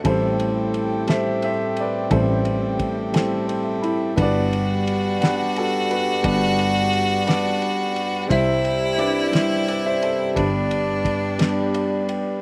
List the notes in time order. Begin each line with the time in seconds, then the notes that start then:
Already playing: A3
0.04 A1 A2 G3 C4 E4 G4 A4 C5, kick, ride
0.40 ride
0.74 ride
1.07 G3 C4 E4 A4 E5, snare, ride
1.12 C5
1.42 C5 E5, ride
1.77 D5, ride
1.82 B4
2.10 A1 A2 G3 C4 E4 A4 C5, kick, ride
2.16 A4
2.45 ride
2.79 kick, ride
3.12 G3 C4 E4 A4, snare, ride
3.46 C5, ride
3.64 E5
3.82 E4 B5, ride
4.16 G1 G2 G3 B3 D4 F#4 B4, kick, ride
4.22 B4 D5
4.53 ride
4.87 ride
5.19 G3 B3 D4 F#5, ride
5.24 G4 B4, snare
5.56 F#4 A4, ride
5.91 G4 B4, ride
6.23 G1 G2 G3 B3 D4 G4 B4, kick, ride
6.28 D4
6.59 ride
6.93 ride
7.25 G3 B3 D4 B4 D5, ride
7.29 snare
7.62 ride
7.96 ride
8.27 C2 C3 G3 C4 E4 C5 E5, kick, ride
8.65 ride
8.98 D4 B4 D5, ride
9.31 G3 C4 E4 C5, snare, ride
9.35 G4
9.68 B4 D5, ride
9.86 C5 E5
10.02 A4 C5, ride
10.35 G1 G2 G3 B3 D4 G4 B4, kick, ride
10.71 ride
11.05 kick, ride
11.39 G3 B3 D4 G4, snare, ride
11.74 D5, ride
12.08 G5, ride